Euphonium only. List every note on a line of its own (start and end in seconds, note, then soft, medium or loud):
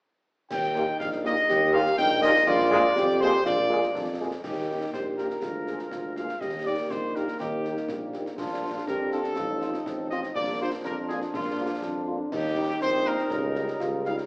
0.51 1.45 D#4 medium
1.49 1.95 G4 loud
1.98 2.44 D#4 medium
2.47 2.97 F4 loud
2.96 3.45 G4 loud
3.46 3.92 F4 loud
3.94 4.05 D4 medium
4.44 4.90 D#4 medium
4.93 5.43 G4 medium
5.42 5.91 F4 medium
5.91 6.38 F4 medium
6.41 6.92 G4 medium
6.91 7.40 D#4 medium
7.40 7.92 D#4 medium
7.90 8.38 A#3 medium
8.39 8.85 D4 medium
8.88 9.38 G4 medium
9.37 9.88 F4 medium
9.86 10.35 C4 medium
10.35 11.02 A#3 medium
11.34 11.80 A#3 medium
11.84 12.29 D4 medium
12.32 12.78 D#4 medium
12.82 13.33 C4 medium
13.32 13.79 C#4 medium
13.80 14.26 F4 medium